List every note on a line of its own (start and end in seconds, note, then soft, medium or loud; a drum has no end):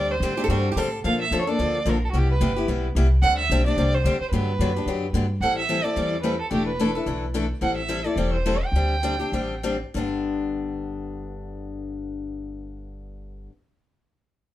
0.00 0.20 D2 medium
0.00 0.14 D3 medium
0.00 0.14 G3 medium
0.00 0.14 C4 medium
0.00 0.14 D4 medium
0.00 0.14 G4 medium
0.00 0.13 D5 loud
0.12 0.66 C5 medium
0.20 0.48 A2 medium
0.20 0.33 D3 medium
0.20 0.33 G3 medium
0.20 0.33 C4 medium
0.20 0.33 D4 medium
0.20 0.33 G4 medium
0.37 0.49 C4 soft
0.37 0.49 D4 medium
0.37 0.49 G4 medium
0.37 0.43 G4 medium
0.44 0.49 A4 medium
0.48 0.75 G2 medium
0.48 0.68 D3 medium
0.48 0.68 G3 medium
0.48 0.68 C4 medium
0.48 0.68 D4 medium
0.48 0.70 F#4 medium
0.48 0.68 G4 medium
0.72 0.77 G4 medium
0.76 1.03 A2 medium
0.76 0.87 D3 medium
0.76 0.87 G3 medium
0.76 0.88 C4 medium
0.76 0.88 D4 medium
0.76 0.88 G4 medium
0.76 0.98 A4 medium
1.04 1.30 A#2 medium
1.04 1.23 D3 medium
1.04 1.23 F3 medium
1.04 1.23 A#3 medium
1.04 1.23 D4 medium
1.04 1.23 A4 medium
1.04 1.19 F5 loud
1.22 1.39 E5 loud
1.31 1.58 F2 medium
1.31 1.42 D3 medium
1.31 1.42 F3 medium
1.31 1.42 A#3 medium
1.31 1.42 D4 medium
1.31 1.42 A4 medium
1.41 1.50 C#5 medium
1.47 1.58 A#3 soft
1.47 1.58 D4 medium
1.47 1.58 A4 medium
1.47 1.90 D5 medium
1.59 1.85 D2 medium
1.59 1.77 D3 medium
1.59 1.78 F3 medium
1.59 1.78 A#3 medium
1.59 1.78 D4 medium
1.59 1.78 A4 medium
1.85 2.12 A#1 medium
1.85 1.96 D3 medium
1.85 1.97 F3 medium
1.85 1.97 A#3 medium
1.85 1.97 D4 medium
1.85 1.97 A4 medium
1.85 2.03 A#4 medium
2.05 2.11 A4 medium
2.11 2.40 C2 medium
2.11 2.32 C3 medium
2.11 2.32 G3 medium
2.11 2.32 B3 medium
2.11 2.33 E4 medium
2.11 2.20 F#4 medium
2.11 2.33 G4 medium
2.18 2.30 G4 medium
2.31 2.81 B4 medium
2.41 2.67 G1 medium
2.41 2.51 C3 medium
2.41 2.51 G3 medium
2.41 2.51 B3 medium
2.41 2.52 E4 medium
2.41 2.51 G4 medium
2.56 2.68 B3 soft
2.56 2.68 E4 medium
2.56 2.68 G4 medium
2.68 2.95 B1 medium
2.68 2.87 C3 medium
2.68 2.87 G3 medium
2.68 2.87 B3 medium
2.68 2.87 E4 medium
2.68 2.87 G4 medium
2.95 3.22 C2 medium
2.95 3.06 C3 medium
2.95 3.06 G3 medium
2.95 3.06 B3 medium
2.95 3.06 E4 medium
2.95 3.06 G4 medium
3.22 3.49 D2 medium
3.22 3.41 D3 medium
3.22 3.42 G3 medium
3.22 3.41 C4 medium
3.22 3.42 D4 medium
3.22 3.42 G4 medium
3.22 3.37 F#5 loud
3.39 3.64 E5 loud
3.50 3.76 B1 medium
3.50 3.61 D3 medium
3.50 3.61 G3 medium
3.50 3.61 C4 medium
3.50 3.61 D4 medium
3.50 3.61 G4 loud
3.66 3.77 C4 medium
3.66 3.77 D4 medium
3.66 3.77 G4 medium
3.66 3.96 D5 loud
3.77 4.04 C2 medium
3.77 3.96 D3 medium
3.77 3.96 G3 medium
3.77 3.96 C4 medium
3.77 3.96 D4 medium
3.77 3.97 G4 medium
3.95 4.20 C5 medium
4.04 4.19 D2 medium
4.04 4.15 D3 medium
4.04 4.16 G3 medium
4.04 4.16 C4 medium
4.04 4.16 D4 medium
4.04 4.16 G4 medium
4.20 4.31 C5 medium
4.20 muted upright bass stroke soft
4.31 4.59 G2 medium
4.31 4.51 D3 medium
4.31 4.51 F#3 medium
4.31 4.51 B3 medium
4.31 4.51 D4 medium
4.31 4.51 G4 medium
4.31 5.10 B4 medium
4.59 4.85 F#2 medium
4.59 4.70 D3 medium
4.59 4.70 F#3 medium
4.59 4.70 B3 medium
4.59 4.71 D4 medium
4.59 4.71 G4 medium
4.76 4.87 B3 soft
4.76 4.87 D4 medium
4.76 4.87 G4 medium
4.86 5.13 F#2 medium
4.86 5.06 D3 medium
4.86 5.06 F#3 medium
4.86 5.06 B3 medium
4.86 5.06 D4 medium
4.86 5.06 G4 medium
5.13 5.40 G2 medium
5.13 5.24 D3 medium
5.13 5.25 F#3 medium
5.13 5.25 B3 medium
5.13 5.25 D4 medium
5.13 5.25 G4 medium
5.40 5.85 A1 medium
5.40 5.61 E3 medium
5.40 5.61 G3 medium
5.40 5.61 C4 medium
5.40 5.61 E4 medium
5.40 5.61 A4 medium
5.40 5.56 F#5 loud
5.59 5.86 E5 medium
5.69 5.79 E3 medium
5.69 5.79 G3 medium
5.69 5.79 C4 medium
5.69 5.80 E4 medium
5.69 5.80 A4 medium
5.84 5.96 C4 soft
5.84 5.96 E4 medium
5.84 5.96 A4 medium
5.84 6.22 D5 medium
5.96 6.40 E2 medium
5.96 6.15 E3 medium
5.96 6.15 G3 medium
5.96 6.15 C4 medium
5.96 6.15 E4 medium
5.96 6.15 A4 medium
6.23 6.34 E3 medium
6.23 6.34 G3 medium
6.23 6.34 C4 medium
6.23 6.34 E4 medium
6.23 6.35 A4 medium
6.23 6.38 B4 medium
6.41 6.51 A4 medium
6.51 6.95 E1 medium
6.51 6.70 E3 medium
6.51 6.70 A3 medium
6.51 6.70 D4 medium
6.51 6.70 E4 medium
6.51 6.65 G4 medium
6.51 6.70 A4 medium
6.66 7.17 B4 medium
6.79 6.89 E3 medium
6.79 6.90 A3 medium
6.79 6.90 D4 medium
6.79 6.90 E4 medium
6.79 6.90 A4 medium
6.95 7.06 D4 soft
6.95 7.06 E4 soft
6.95 7.06 A4 medium
7.06 7.50 B1 medium
7.06 7.25 E3 medium
7.06 7.25 A3 medium
7.06 7.25 D4 medium
7.06 7.25 E4 medium
7.06 7.26 A4 medium
7.34 7.44 E3 medium
7.34 7.44 A3 medium
7.34 7.44 D4 medium
7.34 7.45 E4 medium
7.34 7.45 A4 medium
7.61 8.05 A1 medium
7.61 7.80 E3 medium
7.61 7.80 G3 medium
7.61 7.80 C4 medium
7.61 7.80 E4 medium
7.61 7.80 A4 medium
7.61 7.77 F#5 medium
7.78 8.08 E5 medium
7.88 7.99 E3 medium
7.88 7.99 G3 medium
7.88 7.99 C4 medium
7.88 8.00 E4 medium
7.88 8.00 A4 medium
8.04 8.16 C4 soft
8.04 8.17 E4 medium
8.04 8.16 A4 medium
8.04 8.33 D5 medium
8.16 8.61 E1 medium
8.16 8.36 E3 medium
8.16 8.36 G3 medium
8.16 8.36 C4 medium
8.16 8.36 E4 medium
8.16 8.36 A4 medium
8.34 8.66 C5 medium
8.46 8.56 E3 medium
8.46 8.56 G3 medium
8.46 8.56 C4 medium
8.46 8.56 E4 medium
8.46 8.56 A4 medium
8.65 9.65 G5 medium
8.72 9.20 D2 medium
8.72 8.94 D3 medium
8.72 8.94 G3 medium
8.76 8.94 C4 medium
8.76 8.94 D4 medium
8.76 8.94 G4 medium
9.03 9.14 D3 medium
9.03 9.14 G3 medium
9.03 9.14 C4 medium
9.03 9.14 D4 medium
9.03 9.15 G4 medium
9.20 9.33 C4 soft
9.20 9.32 D4 medium
9.20 9.32 G4 medium
9.32 9.82 A1 medium
9.32 9.53 D3 medium
9.32 9.54 G3 medium
9.32 9.54 C4 medium
9.32 9.54 D4 medium
9.32 9.54 G4 medium
9.63 9.75 D3 medium
9.63 9.75 G3 medium
9.63 9.75 C4 medium
9.63 9.76 D4 medium
9.63 9.76 G4 medium
9.94 13.46 G1 medium
9.94 13.49 G2 medium
9.94 13.50 D3 medium
9.94 13.52 B3 medium
9.94 13.52 D4 medium
9.94 13.52 G4 medium